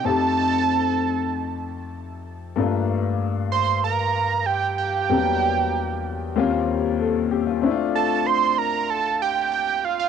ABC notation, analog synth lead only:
X:1
M:4/4
L:1/16
Q:1/4=95
K:Gm
V:1 name="Analog synth lead"
a12 z4 | z6 c'2 b4 g2 g2- | g8- g2 z6 | z2 a2 c'2 b2 a2 g2 g2 f f |]